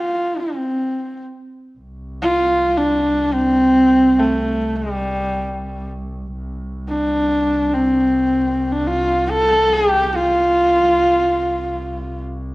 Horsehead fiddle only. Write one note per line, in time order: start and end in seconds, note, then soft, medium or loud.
0.00 0.41 F4 medium
0.40 1.24 C4 medium
2.22 2.79 F4 medium
2.77 3.35 D4 medium
3.34 4.21 C4 loud
4.19 4.78 A3 medium
4.76 5.90 G3 medium
6.88 7.75 D4 medium
7.74 8.73 C4 medium
8.72 8.88 D4 medium
8.87 9.32 F4 medium
9.30 9.75 A4 loud
9.73 10.18 G4 loud
10.16 12.23 F4 loud